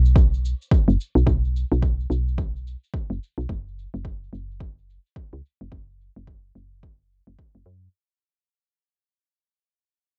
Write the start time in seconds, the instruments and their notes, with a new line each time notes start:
Already playing: fm bass B1
0.05 cabasa
0.16 kick, cabasa
0.34 cabasa
0.45 cabasa
0.62 cabasa
0.71 kick, cabasa
0.88 fm bass F#1, cabasa
1.01 cabasa
1.15 fm bass B1, cabasa
1.27 fm bass B1, kick, cabasa
1.45 cabasa
1.56 cabasa
1.72 fm bass B1, cabasa
1.83 kick, cabasa
2.00 cabasa
2.10 fm bass B1, cabasa
2.28 cabasa
2.38 kick, cabasa
2.56 cabasa
2.67 cabasa
2.84 cabasa
2.94 kick, cabasa
3.10 fm bass F#1, cabasa
3.23 cabasa
3.38 fm bass B1, cabasa
3.49 fm bass F#1, kick, cabasa
3.68 cabasa
3.79 cabasa
3.94 fm bass F#1, cabasa
4.05 kick, cabasa
4.24 cabasa
4.33 fm bass F#1, cabasa
4.51 cabasa
4.61 kick, cabasa
4.78 cabasa
4.90 cabasa
5.06 cabasa
5.16 kick, cabasa
5.33 fm bass C#2, cabasa
5.46 cabasa
5.61 fm bass F#1, cabasa
5.72 fm bass F#1, kick
5.90 cabasa
6.01 cabasa
6.16 fm bass F#1, cabasa
6.27 kick
6.45 cabasa
6.55 fm bass F#1, cabasa
6.73 cabasa
6.83 kick
7.12 cabasa
7.27 fm bass F#1
7.39 kick
7.55 fm bass F#1
7.66 fm bass F#2, cabasa